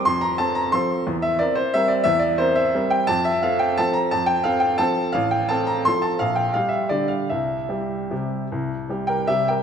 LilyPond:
\new Staff \with { instrumentName = "Upright piano" } { \time 3/4 \key f \major \tempo 4 = 173 << { c'''8 bes''8 a''8 bes''8 c'''4 | r8 e''8 d''8 c''8 e''8 d''8 | e''8 d''8 c''8 e''4 g''8 | a''8 e''8 f''8 g''8 a''8 bes''8 |
a''8 g''8 f''8 g''8 a''4 | f''8 g''8 a''8 bes''8 c'''8 a''8 | f''8 g''8 f''8 e''8 d''8 f''8 | e''2.~ |
e''4. <bes' g''>8 <g' e''>8 <bes' g''>8 | } \\ { f,4 <c' a'>4 <f c' a'>4 | e,4 <c' bes'>4 <g c' bes'>4 | e,4 <c' bes'>4 <g c' bes'>4 | f,4 <c' a'>4 <f c' a'>4 |
f,4 <c' a'>4 <f c' a'>4 | a,,4 <c' a'>4 <f c' a'>4 | bes,,4 <g g'>4 <d g g'>4 | c,4 <g g'>4 <c g g'>4 |
c,4 <g g'>4 <c g>4 | } >> }